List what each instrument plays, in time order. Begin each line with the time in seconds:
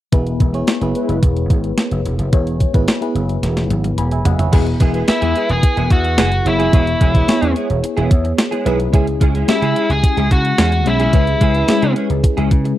0.12 slap bass E1, fm electric piano B3 E4 G#4 B4, kick, closed hi-hat
0.27 closed hi-hat
0.40 slap bass E1, kick, closed hi-hat
0.53 fm electric piano B3 E4 G#4 C#5, closed hi-hat
0.67 snare, closed hi-hat
0.81 slap bass F#1, fm electric piano B3 E4 G#4 B4, closed hi-hat
0.95 analog polysynth G#3 E4 B4, closed hi-hat
1.09 slap bass F#1, closed hi-hat
1.23 slap bass E1, kick, closed hi-hat
1.37 closed hi-hat
1.50 slap bass G#1, kick, closed hi-hat
1.64 closed hi-hat
1.78 snare, closed hi-hat
1.91 slap bass F#1, closed hi-hat
2.05 slap bass E1, closed hi-hat
2.19 slap bass F#1, closed hi-hat
2.33 slap bass E1, fm electric piano B3 E4 G#4 C#5, kick, closed hi-hat
2.47 closed hi-hat
2.60 kick, closed hi-hat
2.74 slap bass G#1, fm electric piano B3 E4 G#4 B4, kick, closed hi-hat
2.88 snare, closed hi-hat
3.01 fm electric piano B3 E4 G#4 B4, closed hi-hat
3.15 slap bass F#1, closed hi-hat
3.29 closed hi-hat
3.43 slap bass E1, snare, closed hi-hat
3.57 snare, closed hi-hat
3.70 slap bass G#1, closed hi-hat, high tom
3.84 closed hi-hat, high tom
3.98 slap bass E1, fm electric piano G#5 B5, closed hi-hat
4.11 fm electric piano E5 G#5, closed hi-hat
4.25 slap bass F#1, fm electric piano D#5 F#5, closed hi-hat, floor tom
4.39 fm electric piano C#5 E5, closed hi-hat, floor tom
4.52 slap bass E1, clean electric guitar G#3 B3 E4 G#4, fm electric piano B3 E4 G#4 B4, kick, closed hi-hat, crash
4.66 muted clean electric guitar stroke, closed hi-hat
4.80 slap bass E1, clean electric guitar G#3 B3 E4 G#4, kick, closed hi-hat
4.94 clean electric guitar G#3 B3 E4 G#4, closed hi-hat
5.08 fm electric piano B3 E4 G#4 B4, lead electric guitar E4, muted slap bass stroke, snare, closed hi-hat
5.21 slap bass E2, clean electric guitar G#3 B3 E4 G#4, closed hi-hat
5.35 clean electric guitar G#3 B3 E4 G#4, closed hi-hat
5.49 slap bass E1, lead electric guitar G#4, muted clean electric guitar stroke, closed hi-hat
5.62 muted clean electric guitar stroke, kick, closed hi-hat
5.76 slap bass E1, clean electric guitar G#3 B3 E4 G#4, closed hi-hat
5.90 slap bass E2, lead electric guitar F#4, muted clean electric guitar stroke, kick, closed hi-hat
6.04 muted clean electric guitar stroke, closed hi-hat
6.18 slap bass F#1, clean electric guitar G#3 B3 E4 G#4, snare, closed hi-hat
6.32 muted clean electric guitar stroke, closed hi-hat
6.45 slap bass F#1, fm electric piano B3 E4 G#4 C#5, lead electric guitar E4, muted clean electric guitar stroke, closed hi-hat
6.59 clean electric guitar G#3 B3 E4 G#4, closed hi-hat
6.73 slap bass E1, clean electric guitar G#3 B3 E4 G#4, fm electric piano B3 E4 G#4 C#5, kick, closed hi-hat
6.87 muted clean electric guitar stroke, closed hi-hat
7.00 slap bass E1, clean electric guitar G#3 B3 E4 G#4, kick, closed hi-hat
7.14 clean electric guitar G#3 B3 E4 G#4, kick, closed hi-hat
7.28 fm electric piano B3 E4 G#4 C#5, muted clean electric guitar stroke, muted slap bass stroke, snare, closed hi-hat
7.42 slap bass E2, clean electric guitar G#3 B3 E4 G#4, closed hi-hat
7.55 clean electric guitar G#3 B3 E4 G#4, closed hi-hat
7.69 slap bass E1, muted clean electric guitar stroke, closed hi-hat
7.83 muted clean electric guitar stroke, closed hi-hat
7.97 slap bass E1, clean electric guitar G#3 B3 E4 G#4, closed hi-hat
8.10 slap bass E2, muted clean electric guitar stroke, kick, closed hi-hat
8.24 muted clean electric guitar stroke, closed hi-hat
8.38 muted clean electric guitar stroke, snare, closed hi-hat
8.51 clean electric guitar G#3 B3 E4 G#4, closed hi-hat
8.65 slap bass B1, clean electric guitar G#3 B3 E4 G#4, fm electric piano B3 E4 G#4 B4, closed hi-hat
8.79 muted clean electric guitar stroke, closed hi-hat
8.93 slap bass C#2, clean electric guitar G#3 C#4 E4 G#4, fm electric piano G#3 C#4 E4 G#4, kick, closed hi-hat
9.07 muted clean electric guitar stroke, closed hi-hat
9.20 slap bass C#2, clean electric guitar G#3 C#4 E4 G#4, kick, closed hi-hat
9.34 clean electric guitar G#3 C#4 E4 G#4, closed hi-hat
9.48 fm electric piano G#3 C#4 E4 G4, lead electric guitar E4, muted clean electric guitar stroke, muted slap bass stroke, snare, closed hi-hat
9.56 fm electric piano G#4
9.62 slap bass C#3, clean electric guitar G#3 C#4 E4 G#4, closed hi-hat
9.76 clean electric guitar G#3 C#4 E4 G#4, closed hi-hat
9.90 slap bass C#2, lead electric guitar G#4, muted clean electric guitar stroke, closed hi-hat
10.03 muted clean electric guitar stroke, kick, closed hi-hat
10.17 slap bass C#2, clean electric guitar G#3 C#4 E4 G#4, closed hi-hat
10.31 slap bass C#3, lead electric guitar F#4, muted clean electric guitar stroke, kick, closed hi-hat
10.45 muted clean electric guitar stroke, closed hi-hat
10.58 slap bass E2, clean electric guitar G#3 C#4 E4 G#4, snare, closed hi-hat
10.72 muted clean electric guitar stroke, closed hi-hat
10.86 slap bass B1, fm electric piano G#3 C#4 E4 G#4, lead electric guitar E4, muted clean electric guitar stroke, closed hi-hat
11.00 clean electric guitar G#3 C#4 E4 G#4, closed hi-hat
11.13 slap bass C#2, clean electric guitar G#3 C#4 E4 G#4, fm electric piano G#3 C#4 E4 B4, kick, closed hi-hat
11.27 muted clean electric guitar stroke, closed hi-hat
11.41 slap bass C#2, clean electric guitar G#3 C#4 E4 G#4, kick, closed hi-hat
11.55 clean electric guitar G#3 C#4 E4 G#4, closed hi-hat
11.68 fm electric piano G#3 C#4 E4 G#4, muted clean electric guitar stroke, muted slap bass stroke, snare, closed hi-hat
11.82 slap bass C#3, clean electric guitar G#3 C#4 E4 G#4, closed hi-hat
11.96 clean electric guitar G#3 C#4 E4 G#4, closed hi-hat
12.10 slap bass C#2, muted clean electric guitar stroke, closed hi-hat
12.24 muted clean electric guitar stroke, kick, closed hi-hat
12.37 slap bass C#2, clean electric guitar G#3 C#4 E4 G#4, closed hi-hat
12.51 slap bass C#3, muted clean electric guitar stroke, kick, closed hi-hat
12.65 muted clean electric guitar stroke, closed hi-hat